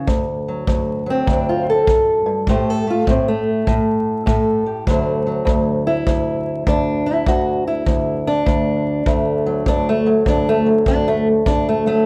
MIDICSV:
0, 0, Header, 1, 3, 480
1, 0, Start_track
1, 0, Tempo, 599401
1, 62, Time_signature, 4, 2, 24, 8
1, 9657, End_track
2, 0, Start_track
2, 0, Title_t, "Steel-string acoustic guitar"
2, 0, Program_c, 0, 25
2, 57, Note_on_c, 0, 38, 71
2, 388, Note_on_c, 0, 54, 42
2, 534, Note_off_c, 0, 38, 0
2, 543, Note_on_c, 0, 38, 74
2, 841, Note_off_c, 0, 54, 0
2, 851, Note_on_c, 0, 54, 45
2, 882, Note_on_c, 0, 60, 84
2, 1003, Note_off_c, 0, 38, 0
2, 1013, Note_on_c, 0, 38, 72
2, 1044, Note_on_c, 0, 62, 71
2, 1190, Note_off_c, 0, 62, 0
2, 1194, Note_on_c, 0, 65, 69
2, 1347, Note_off_c, 0, 65, 0
2, 1358, Note_on_c, 0, 69, 77
2, 1497, Note_off_c, 0, 38, 0
2, 1505, Note_on_c, 0, 42, 57
2, 1511, Note_off_c, 0, 60, 0
2, 1807, Note_off_c, 0, 42, 0
2, 1810, Note_on_c, 0, 43, 66
2, 1980, Note_off_c, 0, 43, 0
2, 1980, Note_off_c, 0, 54, 0
2, 1989, Note_off_c, 0, 69, 0
2, 1991, Note_on_c, 0, 45, 69
2, 1999, Note_on_c, 0, 72, 76
2, 2000, Note_on_c, 0, 57, 51
2, 2005, Note_on_c, 0, 67, 49
2, 2162, Note_off_c, 0, 72, 0
2, 2162, Note_on_c, 0, 69, 88
2, 2289, Note_off_c, 0, 57, 0
2, 2299, Note_on_c, 0, 57, 46
2, 2313, Note_off_c, 0, 67, 0
2, 2325, Note_on_c, 0, 65, 75
2, 2450, Note_off_c, 0, 45, 0
2, 2459, Note_on_c, 0, 45, 73
2, 2464, Note_off_c, 0, 57, 0
2, 2473, Note_off_c, 0, 65, 0
2, 2480, Note_on_c, 0, 60, 71
2, 2628, Note_on_c, 0, 57, 81
2, 2630, Note_off_c, 0, 60, 0
2, 2791, Note_off_c, 0, 69, 0
2, 2931, Note_off_c, 0, 45, 0
2, 2941, Note_on_c, 0, 45, 74
2, 3402, Note_off_c, 0, 45, 0
2, 3412, Note_on_c, 0, 45, 70
2, 3423, Note_on_c, 0, 69, 47
2, 3731, Note_off_c, 0, 57, 0
2, 3734, Note_on_c, 0, 67, 43
2, 3881, Note_off_c, 0, 69, 0
2, 3882, Note_off_c, 0, 67, 0
2, 3896, Note_off_c, 0, 45, 0
2, 3900, Note_on_c, 0, 38, 74
2, 3905, Note_on_c, 0, 50, 47
2, 3911, Note_on_c, 0, 54, 46
2, 3913, Note_on_c, 0, 57, 47
2, 3922, Note_on_c, 0, 72, 48
2, 4214, Note_off_c, 0, 54, 0
2, 4217, Note_on_c, 0, 54, 44
2, 4362, Note_off_c, 0, 38, 0
2, 4365, Note_on_c, 0, 38, 73
2, 4697, Note_off_c, 0, 57, 0
2, 4700, Note_on_c, 0, 64, 90
2, 4856, Note_off_c, 0, 38, 0
2, 4859, Note_on_c, 0, 38, 73
2, 5335, Note_off_c, 0, 38, 0
2, 5338, Note_on_c, 0, 38, 74
2, 5345, Note_off_c, 0, 64, 0
2, 5345, Note_off_c, 0, 72, 0
2, 5348, Note_on_c, 0, 62, 86
2, 5655, Note_off_c, 0, 62, 0
2, 5656, Note_on_c, 0, 64, 78
2, 5822, Note_off_c, 0, 38, 0
2, 5823, Note_off_c, 0, 64, 0
2, 5825, Note_on_c, 0, 38, 72
2, 5832, Note_on_c, 0, 66, 82
2, 6137, Note_off_c, 0, 66, 0
2, 6146, Note_on_c, 0, 64, 77
2, 6293, Note_off_c, 0, 38, 0
2, 6296, Note_on_c, 0, 38, 69
2, 6619, Note_off_c, 0, 64, 0
2, 6625, Note_on_c, 0, 62, 99
2, 6771, Note_off_c, 0, 38, 0
2, 6774, Note_on_c, 0, 38, 76
2, 7251, Note_off_c, 0, 38, 0
2, 7255, Note_on_c, 0, 38, 73
2, 7260, Note_on_c, 0, 57, 50
2, 7569, Note_off_c, 0, 54, 0
2, 7578, Note_on_c, 0, 54, 49
2, 7579, Note_off_c, 0, 62, 0
2, 7736, Note_off_c, 0, 38, 0
2, 7739, Note_on_c, 0, 38, 71
2, 7745, Note_off_c, 0, 50, 0
2, 7754, Note_on_c, 0, 62, 101
2, 7908, Note_off_c, 0, 62, 0
2, 7917, Note_off_c, 0, 57, 0
2, 7920, Note_on_c, 0, 57, 90
2, 8055, Note_off_c, 0, 54, 0
2, 8058, Note_on_c, 0, 54, 45
2, 8071, Note_off_c, 0, 57, 0
2, 8213, Note_off_c, 0, 38, 0
2, 8217, Note_on_c, 0, 38, 72
2, 8235, Note_on_c, 0, 62, 83
2, 8388, Note_off_c, 0, 62, 0
2, 8398, Note_on_c, 0, 57, 93
2, 8536, Note_off_c, 0, 54, 0
2, 8539, Note_on_c, 0, 54, 45
2, 8550, Note_off_c, 0, 57, 0
2, 8704, Note_off_c, 0, 38, 0
2, 8707, Note_on_c, 0, 38, 72
2, 8712, Note_on_c, 0, 62, 101
2, 8867, Note_off_c, 0, 62, 0
2, 8871, Note_on_c, 0, 57, 84
2, 9026, Note_off_c, 0, 57, 0
2, 9169, Note_off_c, 0, 38, 0
2, 9178, Note_on_c, 0, 38, 67
2, 9184, Note_on_c, 0, 62, 100
2, 9342, Note_off_c, 0, 62, 0
2, 9358, Note_on_c, 0, 57, 79
2, 9493, Note_off_c, 0, 54, 0
2, 9498, Note_off_c, 0, 57, 0
2, 9502, Note_on_c, 0, 54, 49
2, 9508, Note_on_c, 0, 57, 98
2, 9657, Note_off_c, 0, 38, 0
2, 9657, Note_off_c, 0, 54, 0
2, 9657, Note_off_c, 0, 57, 0
2, 9657, End_track
3, 0, Start_track
3, 0, Title_t, "Drums"
3, 61, Note_on_c, 9, 36, 60
3, 141, Note_off_c, 9, 36, 0
3, 540, Note_on_c, 9, 36, 59
3, 620, Note_off_c, 9, 36, 0
3, 1020, Note_on_c, 9, 36, 66
3, 1100, Note_off_c, 9, 36, 0
3, 1501, Note_on_c, 9, 36, 66
3, 1581, Note_off_c, 9, 36, 0
3, 1978, Note_on_c, 9, 36, 62
3, 2058, Note_off_c, 9, 36, 0
3, 2459, Note_on_c, 9, 36, 60
3, 2539, Note_off_c, 9, 36, 0
3, 2940, Note_on_c, 9, 36, 60
3, 3020, Note_off_c, 9, 36, 0
3, 3420, Note_on_c, 9, 36, 66
3, 3500, Note_off_c, 9, 36, 0
3, 3900, Note_on_c, 9, 36, 63
3, 3980, Note_off_c, 9, 36, 0
3, 4379, Note_on_c, 9, 36, 63
3, 4459, Note_off_c, 9, 36, 0
3, 4859, Note_on_c, 9, 36, 64
3, 4939, Note_off_c, 9, 36, 0
3, 5339, Note_on_c, 9, 36, 67
3, 5419, Note_off_c, 9, 36, 0
3, 5817, Note_on_c, 9, 36, 62
3, 5898, Note_off_c, 9, 36, 0
3, 6298, Note_on_c, 9, 36, 61
3, 6378, Note_off_c, 9, 36, 0
3, 6778, Note_on_c, 9, 36, 61
3, 6859, Note_off_c, 9, 36, 0
3, 7257, Note_on_c, 9, 36, 61
3, 7337, Note_off_c, 9, 36, 0
3, 7737, Note_on_c, 9, 36, 56
3, 7817, Note_off_c, 9, 36, 0
3, 8217, Note_on_c, 9, 36, 63
3, 8297, Note_off_c, 9, 36, 0
3, 8698, Note_on_c, 9, 36, 66
3, 8778, Note_off_c, 9, 36, 0
3, 9179, Note_on_c, 9, 36, 66
3, 9259, Note_off_c, 9, 36, 0
3, 9657, End_track
0, 0, End_of_file